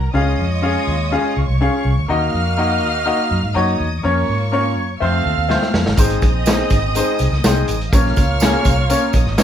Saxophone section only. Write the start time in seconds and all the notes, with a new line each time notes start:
0.14 G#3 F4 C#5
2.09 A#3 F#4 D#5
4.04 A#3 F4 C#5
5.01 C4 A4 F5
5.98 C4 G#4 D#5
7.92 A#3 F4 C#5